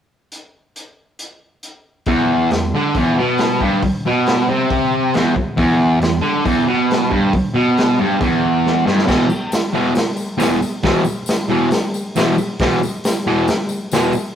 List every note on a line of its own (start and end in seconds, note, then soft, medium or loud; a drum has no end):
0.32 closed hi-hat medium
0.76 closed hi-hat medium
1.19 closed hi-hat medium
1.63 closed hi-hat medium
2.06 2.51 E2 loud
2.06 kick loud
2.06 open hi-hat soft
2.51 2.69 E2 medium
2.51 snare loud
2.51 open hi-hat soft
2.75 2.95 D3 medium
2.95 3.17 E2 medium
2.95 kick loud
2.95 open hi-hat medium
3.18 3.61 B2 medium
3.38 snare loud
3.38 open hi-hat medium
3.61 3.82 G2 loud
3.61 kick medium
3.82 muted distorted electric guitar stroke medium
3.82 kick loud
3.82 open hi-hat soft
4.06 4.49 B2 loud
4.26 snare loud
4.26 open hi-hat soft
4.49 5.14 C3 medium
4.70 kick loud
4.70 open hi-hat soft
5.14 5.35 E2 loud
5.14 snare loud
5.14 open hi-hat soft
5.36 muted distorted electric guitar stroke medium
5.36 kick medium
5.57 5.99 E2 loud
5.57 kick loud
5.57 open hi-hat soft
6.00 6.19 E2 medium
6.00 snare loud
6.00 open hi-hat soft
6.22 6.44 D3 loud
6.45 6.67 E2 loud
6.45 kick loud
6.45 open hi-hat medium
6.67 7.10 B2 loud
6.91 snare loud
6.91 open hi-hat medium
7.10 7.32 G2 medium
7.10 kick medium
7.33 muted distorted electric guitar stroke medium
7.33 kick loud
7.33 open hi-hat soft
7.54 7.98 B2 medium
7.77 snare loud
7.77 open hi-hat medium
7.99 8.20 G2 medium
8.20 8.86 E2 medium
8.20 kick loud
8.20 open hi-hat soft
8.66 snare medium
8.86 9.06 G2 medium
8.86 snare medium
8.98 snare medium
9.06 9.25 E2 medium
9.06 9.26 B2 medium
9.06 9.26 E3 loud
9.06 kick loud
9.06 snare loud
9.06 crash loud
9.30 tambourine medium
9.52 snare loud
9.52 open hi-hat medium
9.52 tambourine medium
9.74 9.92 E2 medium
9.74 9.92 B2 medium
9.74 9.93 E3 medium
9.95 snare loud
9.95 open hi-hat medium
9.95 tambourine medium
10.17 tambourine medium
10.38 10.57 E2 loud
10.38 10.57 B2 loud
10.38 10.58 E3 loud
10.38 snare loud
10.38 open hi-hat medium
10.38 tambourine medium
10.62 tambourine medium
10.83 11.02 E2 medium
10.83 11.02 B2 loud
10.83 11.02 E3 loud
10.83 kick loud
10.83 snare loud
10.83 open hi-hat medium
11.05 tambourine medium
11.26 snare loud
11.26 open hi-hat medium
11.26 tambourine medium
11.50 11.68 E2 medium
11.50 11.68 B2 medium
11.50 11.68 E3 medium
11.71 snare loud
11.71 open hi-hat medium
11.71 tambourine medium
11.94 tambourine medium
12.16 12.34 E2 medium
12.16 12.34 B2 loud
12.16 12.35 E3 loud
12.16 snare loud
12.16 open hi-hat medium
12.16 tambourine medium
12.38 tambourine medium
12.59 12.78 E2 medium
12.59 12.79 B2 loud
12.59 12.79 E3 medium
12.59 kick loud
12.59 snare loud
12.59 open hi-hat medium
12.83 tambourine medium
13.04 snare loud
13.04 open hi-hat medium
13.04 tambourine medium
13.27 13.44 E2 medium
13.27 13.44 B2 loud
13.27 13.45 E3 loud
13.48 snare loud
13.48 open hi-hat medium
13.48 tambourine medium
13.69 tambourine medium
13.92 14.10 E2 medium
13.92 14.11 B2 loud
13.92 14.11 E3 loud
13.92 snare loud
13.92 open hi-hat medium
13.92 tambourine loud
14.13 tambourine medium